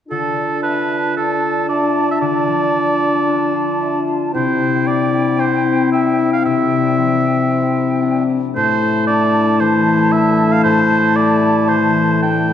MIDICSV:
0, 0, Header, 1, 6, 480
1, 0, Start_track
1, 0, Key_signature, -1, "minor"
1, 0, Tempo, 529101
1, 89, Time_signature, 4, 2, 24, 8
1, 6808, Tempo, 524017
1, 11413, End_track
2, 0, Start_track
2, 0, Title_t, "Flute"
2, 0, Program_c, 0, 73
2, 103, Note_on_c, 0, 81, 38
2, 3910, Note_off_c, 0, 81, 0
2, 3933, Note_on_c, 0, 79, 48
2, 7478, Note_off_c, 0, 79, 0
2, 7777, Note_on_c, 0, 81, 49
2, 11413, Note_off_c, 0, 81, 0
2, 11413, End_track
3, 0, Start_track
3, 0, Title_t, "Oboe"
3, 0, Program_c, 1, 68
3, 95, Note_on_c, 1, 69, 46
3, 541, Note_off_c, 1, 69, 0
3, 568, Note_on_c, 1, 71, 55
3, 1039, Note_off_c, 1, 71, 0
3, 1056, Note_on_c, 1, 69, 46
3, 1525, Note_off_c, 1, 69, 0
3, 1531, Note_on_c, 1, 74, 49
3, 1885, Note_off_c, 1, 74, 0
3, 1913, Note_on_c, 1, 76, 44
3, 1962, Note_off_c, 1, 76, 0
3, 2006, Note_on_c, 1, 74, 59
3, 3662, Note_off_c, 1, 74, 0
3, 3943, Note_on_c, 1, 72, 56
3, 4420, Note_on_c, 1, 74, 61
3, 4434, Note_off_c, 1, 72, 0
3, 4896, Note_on_c, 1, 72, 56
3, 4910, Note_off_c, 1, 74, 0
3, 5363, Note_off_c, 1, 72, 0
3, 5368, Note_on_c, 1, 76, 54
3, 5723, Note_off_c, 1, 76, 0
3, 5740, Note_on_c, 1, 77, 59
3, 5849, Note_off_c, 1, 77, 0
3, 5855, Note_on_c, 1, 76, 67
3, 7498, Note_off_c, 1, 76, 0
3, 7772, Note_on_c, 1, 72, 71
3, 8216, Note_off_c, 1, 72, 0
3, 8242, Note_on_c, 1, 74, 70
3, 8732, Note_on_c, 1, 72, 63
3, 8746, Note_off_c, 1, 74, 0
3, 9204, Note_on_c, 1, 76, 69
3, 9218, Note_off_c, 1, 72, 0
3, 9571, Note_on_c, 1, 77, 70
3, 9585, Note_off_c, 1, 76, 0
3, 9667, Note_off_c, 1, 77, 0
3, 9672, Note_on_c, 1, 72, 85
3, 10156, Note_on_c, 1, 74, 76
3, 10170, Note_off_c, 1, 72, 0
3, 10637, Note_on_c, 1, 72, 70
3, 10651, Note_off_c, 1, 74, 0
3, 11123, Note_off_c, 1, 72, 0
3, 11127, Note_on_c, 1, 79, 69
3, 11413, Note_off_c, 1, 79, 0
3, 11413, End_track
4, 0, Start_track
4, 0, Title_t, "Clarinet"
4, 0, Program_c, 2, 71
4, 75, Note_on_c, 2, 65, 39
4, 3896, Note_off_c, 2, 65, 0
4, 3936, Note_on_c, 2, 64, 49
4, 7479, Note_off_c, 2, 64, 0
4, 7758, Note_on_c, 2, 64, 55
4, 11413, Note_off_c, 2, 64, 0
4, 11413, End_track
5, 0, Start_track
5, 0, Title_t, "Harp"
5, 0, Program_c, 3, 46
5, 96, Note_on_c, 3, 50, 40
5, 329, Note_on_c, 3, 69, 34
5, 564, Note_on_c, 3, 76, 25
5, 975, Note_off_c, 3, 76, 0
5, 1061, Note_on_c, 3, 62, 36
5, 1533, Note_on_c, 3, 76, 25
5, 1941, Note_off_c, 3, 76, 0
5, 1994, Note_off_c, 3, 50, 0
5, 2005, Note_on_c, 3, 50, 42
5, 2245, Note_on_c, 3, 53, 35
5, 2726, Note_on_c, 3, 65, 30
5, 2957, Note_off_c, 3, 62, 0
5, 2968, Note_on_c, 3, 62, 36
5, 3197, Note_off_c, 3, 65, 0
5, 3208, Note_on_c, 3, 65, 31
5, 3446, Note_on_c, 3, 76, 25
5, 3685, Note_off_c, 3, 65, 0
5, 3696, Note_on_c, 3, 65, 35
5, 3860, Note_off_c, 3, 76, 0
5, 3867, Note_off_c, 3, 69, 0
5, 3940, Note_on_c, 3, 48, 44
5, 3954, Note_off_c, 3, 50, 0
5, 3954, Note_off_c, 3, 53, 0
5, 3954, Note_off_c, 3, 62, 0
5, 3957, Note_off_c, 3, 65, 0
5, 4177, Note_on_c, 3, 64, 37
5, 4414, Note_on_c, 3, 62, 32
5, 4647, Note_off_c, 3, 64, 0
5, 4658, Note_on_c, 3, 64, 34
5, 4820, Note_off_c, 3, 62, 0
5, 4894, Note_on_c, 3, 60, 41
5, 5115, Note_off_c, 3, 64, 0
5, 5125, Note_on_c, 3, 64, 39
5, 5373, Note_on_c, 3, 62, 31
5, 5599, Note_off_c, 3, 64, 0
5, 5610, Note_on_c, 3, 64, 38
5, 5779, Note_off_c, 3, 62, 0
5, 5844, Note_off_c, 3, 48, 0
5, 5855, Note_on_c, 3, 48, 54
5, 6088, Note_on_c, 3, 55, 38
5, 6334, Note_on_c, 3, 53, 34
5, 6562, Note_off_c, 3, 64, 0
5, 6573, Note_on_c, 3, 64, 37
5, 6739, Note_off_c, 3, 53, 0
5, 6796, Note_off_c, 3, 60, 0
5, 6807, Note_on_c, 3, 60, 42
5, 7038, Note_off_c, 3, 64, 0
5, 7049, Note_on_c, 3, 64, 37
5, 7286, Note_on_c, 3, 62, 37
5, 7521, Note_off_c, 3, 64, 0
5, 7532, Note_on_c, 3, 64, 41
5, 7698, Note_off_c, 3, 62, 0
5, 7777, Note_on_c, 3, 45, 56
5, 7789, Note_off_c, 3, 55, 0
5, 7792, Note_off_c, 3, 48, 0
5, 8007, Note_off_c, 3, 64, 0
5, 8018, Note_on_c, 3, 64, 39
5, 8256, Note_on_c, 3, 62, 37
5, 8484, Note_off_c, 3, 64, 0
5, 8495, Note_on_c, 3, 64, 43
5, 8659, Note_off_c, 3, 62, 0
5, 8725, Note_on_c, 3, 52, 50
5, 8957, Note_off_c, 3, 64, 0
5, 8968, Note_on_c, 3, 64, 44
5, 9211, Note_on_c, 3, 62, 37
5, 9437, Note_off_c, 3, 64, 0
5, 9448, Note_on_c, 3, 64, 42
5, 9616, Note_off_c, 3, 62, 0
5, 9673, Note_off_c, 3, 45, 0
5, 9684, Note_on_c, 3, 45, 57
5, 9921, Note_on_c, 3, 57, 43
5, 10166, Note_on_c, 3, 55, 37
5, 10380, Note_off_c, 3, 60, 0
5, 10398, Note_off_c, 3, 64, 0
5, 10409, Note_on_c, 3, 64, 38
5, 10573, Note_off_c, 3, 55, 0
5, 10636, Note_off_c, 3, 52, 0
5, 10647, Note_on_c, 3, 52, 45
5, 10878, Note_off_c, 3, 64, 0
5, 10889, Note_on_c, 3, 64, 34
5, 11132, Note_on_c, 3, 62, 35
5, 11357, Note_off_c, 3, 64, 0
5, 11368, Note_on_c, 3, 64, 47
5, 11413, Note_off_c, 3, 45, 0
5, 11413, Note_off_c, 3, 52, 0
5, 11413, Note_off_c, 3, 57, 0
5, 11413, Note_off_c, 3, 62, 0
5, 11413, Note_off_c, 3, 64, 0
5, 11413, End_track
6, 0, Start_track
6, 0, Title_t, "French horn section"
6, 0, Program_c, 4, 60
6, 79, Note_on_c, 4, 62, 52
6, 3897, Note_off_c, 4, 62, 0
6, 3938, Note_on_c, 4, 60, 50
6, 7608, Note_off_c, 4, 60, 0
6, 7763, Note_on_c, 4, 57, 71
6, 11413, Note_off_c, 4, 57, 0
6, 11413, End_track
0, 0, End_of_file